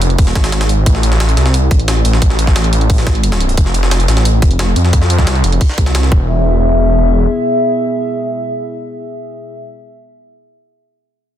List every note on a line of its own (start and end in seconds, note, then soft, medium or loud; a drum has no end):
0.00 0.17 F1 loud
0.00 0.84 B3 medium
0.00 6.08 E5 medium
0.00 closed hi-hat medium
0.10 closed hi-hat soft
0.18 0.34 E1 loud
0.18 kick loud
0.18 closed hi-hat medium
0.18 open hi-hat medium
0.27 snare soft
0.27 closed hi-hat soft
0.35 0.85 G#1 loud
0.35 kick loud
0.35 snare loud
0.35 closed hi-hat medium
0.44 snare loud
0.44 closed hi-hat medium
0.44 closed hi-hat soft
0.52 snare loud
0.52 closed hi-hat medium
0.61 snare loud
0.61 closed hi-hat medium
0.69 closed hi-hat medium
0.86 1.36 A1 medium
0.86 3.55 C4 medium
0.86 3.55 A4 medium
0.86 kick loud
0.86 closed hi-hat medium
0.95 snare soft
1.03 closed hi-hat medium
1.12 snare medium
1.20 snare loud
1.20 closed hi-hat medium
1.29 closed hi-hat soft
1.37 1.70 C2 loud
1.37 snare medium
1.37 closed hi-hat medium
1.46 snare medium
1.46 closed hi-hat soft
1.54 closed hi-hat medium
1.71 2.04 A1 loud
1.71 kick loud
1.71 closed hi-hat medium
1.79 closed hi-hat soft
1.88 snare loud
1.88 closed hi-hat medium
2.05 2.54 A1 loud
2.05 closed hi-hat medium
2.13 snare soft
2.22 kick loud
2.22 closed hi-hat medium
2.30 snare soft
2.39 closed hi-hat medium
2.47 kick medium
2.47 snare medium
2.56 3.56 A1 loud
2.56 snare loud
2.56 closed hi-hat medium
2.64 closed hi-hat soft
2.73 closed hi-hat medium
2.81 closed hi-hat soft
2.90 kick loud
2.90 closed hi-hat medium
2.90 open hi-hat medium
2.98 snare soft
2.98 closed hi-hat soft
3.07 kick medium
3.07 snare loud
3.07 closed hi-hat medium
3.15 closed hi-hat soft
3.24 closed hi-hat medium
3.32 snare loud
3.32 closed hi-hat medium
3.40 closed hi-hat medium
3.49 closed hi-hat medium
3.57 4.07 F1 loud
3.57 6.09 A3 medium
3.57 6.09 F4 medium
3.57 kick loud
3.57 closed hi-hat loud
3.57 closed hi-hat medium
3.66 snare soft
3.74 closed hi-hat medium
3.83 snare medium
3.91 snare loud
3.91 closed hi-hat medium
4.00 closed hi-hat soft
4.08 4.41 A1 medium
4.08 snare medium
4.08 closed hi-hat medium
4.17 snare medium
4.17 closed hi-hat soft
4.25 closed hi-hat medium
4.42 4.75 F1 loud
4.42 kick loud
4.42 closed hi-hat medium
4.51 closed hi-hat soft
4.59 snare loud
4.59 closed hi-hat loud
4.59 closed hi-hat medium
4.76 5.26 F2 medium
4.76 closed hi-hat medium
4.85 snare soft
4.93 kick loud
4.93 closed hi-hat loud
4.93 closed hi-hat medium
5.02 snare soft
5.10 closed hi-hat medium
5.19 kick medium
5.19 snare medium
5.27 5.43 C2 loud
5.27 snare loud
5.27 closed hi-hat medium
5.35 closed hi-hat soft
5.44 5.60 F1 medium
5.44 closed hi-hat medium
5.52 closed hi-hat soft
5.61 kick loud
5.61 closed hi-hat medium
5.61 open hi-hat medium
5.69 snare soft
5.78 6.11 C2 loud
5.78 kick loud
5.78 closed hi-hat medium
5.86 snare medium
5.86 closed hi-hat soft
5.95 snare loud
5.95 closed hi-hat loud
5.95 closed hi-hat medium
6.03 snare medium
6.12 7.26 E1 medium
6.12 9.63 B3 medium
6.12 9.63 G#4 medium
6.12 9.63 E5 medium
6.12 kick loud